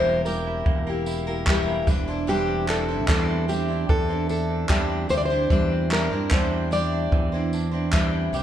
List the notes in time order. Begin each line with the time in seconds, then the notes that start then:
Already playing: E1 E3 G3 E4 G4 A#4 C5
0.06 A#3
0.25 G3 E4 G4 A#4, tambourine
0.47 E4
0.66 E1 A#3, kick
0.87 A#3 E4 G4 A#4
1.06 E4, tambourine
1.27 A#3 E4 G4 A#4
1.47 E3 G3 E4 G4 A#4, kick, clap
1.68 A#3
1.87 E1 E3 G3 D4 E4 C5, kick, tambourine
2.08 D4 E4 C5
2.27 E3 G3 D4 E4 G4 C5
2.48 C4
2.68 G3 D4 E4 A4 C5, clap, tambourine
2.88 C4 D4 E4 C5
3.08 E2 E3 G3 D4 E4 A4 C5, kick, clap
3.29 C4
3.48 G3 D4 E4 G4 C5, tambourine
3.68 D4 E4 C5
3.89 E2 E3 A4, kick
4.09 C4 D4 E4 C5
4.29 D4 A4, tambourine
4.50 C4
4.69 E2 E3 G3 D4 E4 G4 C5, kick, clap
4.90 C4
5.09 D2 G3 D4 E4 G4 C5, tambourine
5.18 D5
5.25 C5
5.30 D4 E4 C5
5.50 E2 E3 G3 D4 E4 C5, kick
5.72 C4
5.90 G3 D4 E4 A#4 C5, clap, tambourine
6.10 G2 C4 D4 E4 C5
6.31 E2 E3 G3 D4 E4 C5, kick, clap
6.53 C4
6.71 G3 D4 E4 G4 C5 D5, tambourine
6.93 D4
7.12 E2 E3, kick
7.32 C4 D4 E4 C5
7.53 D4, tambourine
7.71 C4 D4 E4 C5
7.92 E3 G3 D4 E4 C5, kick, clap
8.14 C4
8.33 C2 G3 D4 E4 G4 C5, tambourine